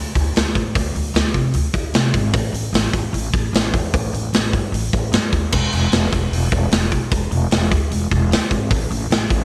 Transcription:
Already playing: D2
0.15 D2, kick, open hi-hat
0.36 D2, snare, open hi-hat
0.55 A2, kick, open hi-hat
0.75 D2, kick, open hi-hat
0.95 D2, open hi-hat
1.14 D2, snare, open hi-hat
1.34 C3, kick, open hi-hat
1.54 D2, open hi-hat
1.73 D2, kick, open hi-hat
1.94 C3, snare, open hi-hat
2.13 G#1, kick, open hi-hat
2.33 A1, kick, open hi-hat
2.53 A1, open hi-hat
2.73 A1, snare, open hi-hat
2.93 A1, kick, open hi-hat
3.13 A1, open hi-hat
3.34 A1, kick, open hi-hat
3.53 A1, snare, open hi-hat
3.74 E2, kick, open hi-hat
3.94 A1, kick, open hi-hat
4.13 A1, open hi-hat
4.33 A1, snare, open hi-hat
4.53 G2, kick, open hi-hat
4.72 A1, open hi-hat
4.93 A1, kick, open hi-hat
5.12 G2, snare, open hi-hat
5.32 D#2, kick, open hi-hat
5.52 E1, kick, crash
5.72 E1, open hi-hat
5.92 E1, snare, open hi-hat
6.12 E1, kick, open hi-hat
6.32 E1, open hi-hat
6.51 E1, kick, open hi-hat
6.71 E1, snare, open hi-hat
6.92 B1, kick, open hi-hat
7.12 E1, kick, open hi-hat
7.31 E1, open hi-hat
7.51 E1, snare, open hi-hat
7.71 D2, kick, open hi-hat
7.91 E1, open hi-hat
8.11 E1, kick, open hi-hat
8.31 D2, snare, open hi-hat
8.51 G#1, kick, open hi-hat
8.70 A1, kick, open hi-hat
8.91 A1, open hi-hat
9.10 A1, snare, open hi-hat
9.30 A1, kick, open hi-hat

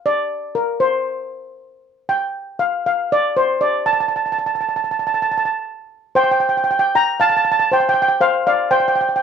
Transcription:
0.06 D5
0.55 A#4
0.80 C5
2.09 G5
2.59 F5
2.86 F5
3.12 D5
3.37 C5
3.61 D5
3.86 A5
3.93 A5
4.01 A5
4.08 A5
4.16 A5
4.26 A5
4.32 A5
4.38 A5
4.46 A5
4.55 A5
4.61 A5
4.69 A5
4.76 A5
4.84 A5
4.91 A5
4.99 A5
5.07 A5
5.14 A5
5.22 A5
5.32 A5
5.38 A5
5.45 A5
6.15 C5 G5
6.24 G5
6.31 G5
6.40 G5
6.49 G5
6.57 G5
6.64 G5
6.71 G5
6.79 G5
6.95 G5 A#5
7.20 F5 A5
7.30 A5
7.37 A5
7.45 A5
7.52 A5
7.60 A5
7.72 C5 G5
7.80 G5
7.89 G5
7.94 G5
8.02 G5
8.08 G5
8.21 C5 F5
8.47 D5 F5
8.71 C5 G5
8.80 G5
8.88 G5
8.96 G5
9.01 G5
9.09 G5
9.16 G5

